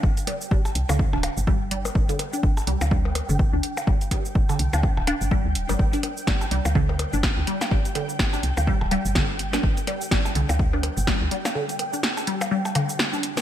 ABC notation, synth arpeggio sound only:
X:1
M:4/4
L:1/16
Q:"Swing 16ths" 1/4=125
K:Cdor
V:1 name="Synth arpeggio sound" clef=bass
z2 G, z G, z2 D, z D z2 G, z G, z | z D, z D z2 G, z G, z2 D, z D z2 | G, z G, z2 D, z D z2 D z G, z2 G, | z D z2 G, z G, z D, z2 D z2 G, z |
G, z D, z2 D z2 G, z G, z D, z2 D | z2 G, z G, z D, z2 D z2 G, z G, z | D, z2 D z2 G, z G, z D, z2 D z2 |]